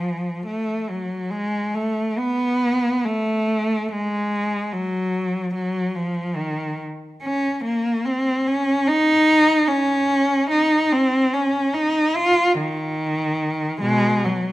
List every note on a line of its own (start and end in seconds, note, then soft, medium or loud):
0.00 0.47 F3 medium
0.46 0.88 A3 medium
0.89 1.32 F#3 medium
1.31 1.75 G#3 medium
1.74 2.18 A3 medium
2.18 3.05 B3 medium
3.05 3.93 A3 medium
3.92 4.74 G#3 medium
4.73 5.53 F#3 medium
5.54 5.95 F#3 medium
5.95 6.38 F3 medium
6.37 6.81 D#3 medium
7.23 7.62 C#4 medium
7.65 8.06 A#3 medium
8.05 8.47 C4 medium
8.47 8.87 C#4 medium
8.87 9.69 D#4 medium
9.68 10.50 C#4 medium
10.50 10.91 D#4 medium
10.92 11.34 C4 medium
11.33 11.75 C#4 medium
11.74 12.17 D#4 medium
12.17 12.59 F4 medium
12.58 13.79 D#3 medium
13.81 14.21 B2 medium
13.81 14.24 G#3 medium
14.25 14.52 F#3 medium